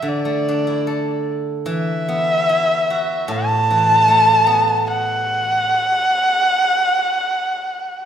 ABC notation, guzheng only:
X:1
M:2/4
L:1/16
Q:1/4=75
K:none
V:1 name="Guzheng"
[D,E,] A, D E A4 | E,2 B,2 E2 ^F2 | A,,2 E,2 A,2 B,2- | B,6 z2 |
z8 |]